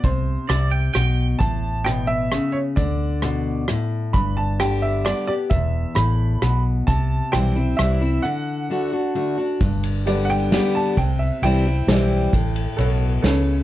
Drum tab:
RD |------|------|------|------|
HH |x-x-x-|x-x-x-|x-x-x-|x-x-x-|
SD |--r-r-|--r-r-|--r-r-|--r-r-|
BD |o-----|o-----|o-----|o-----|

RD |------|------|------|xxx-x-|
HH |x-x-x-|x-x-x-|------|------|
SD |--r-r-|--r-r-|------|----o-|
BD |o-----|o-----|------|o-----|

RD |x-x-x-|xxx-x-|
HH |------|------|
SD |----o-|----o-|
BD |o-----|o-----|